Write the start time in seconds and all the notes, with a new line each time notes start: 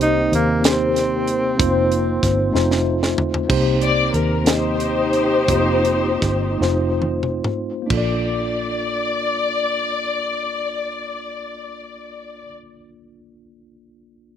Already playing: C2 C3 D#3 G3 A#3 C4 D#4 G4 C5
0.01 D#4, closed hi-hat
0.32 D#2 A#3, closed hi-hat
0.62 A#3 C4 D#4 G4 A#4, snare, closed hi-hat
0.66 C4
0.72 C5
0.96 snare, closed hi-hat
1.27 closed hi-hat
1.57 F1 F3 A3 C4 D#4 F4 C5, kick, closed hi-hat
1.63 A#3
1.92 closed hi-hat
2.23 G1, kick, snare, closed hi-hat
2.52 F1 A3 C4 D#4 F4 C5, snare
2.71 snare
3.03 snare
3.18 floor tom
3.34 floor tom
3.47 C2 C3 A#3 C4 D#4 G4 C5, kick, crash
3.82 D5, closed hi-hat
4.14 D#2 A#4, closed hi-hat
4.44 A#3 C4 D#4 G4 D#5, snare, closed hi-hat
4.48 C5
4.80 closed hi-hat
5.13 closed hi-hat
5.46 F1 A3 C4 D#4 F4 C5, kick, closed hi-hat
5.53 A#3
5.85 closed hi-hat
6.22 G1, kick, snare, closed hi-hat
6.58 F1 A3 C4 D#4 F4 C5, snare
7.02 high tom
7.23 mid tom
7.44 mid tom
7.82 A#3
7.86 A#1 D4 F4, kick, crash
7.92 A4 D5
7.97 D5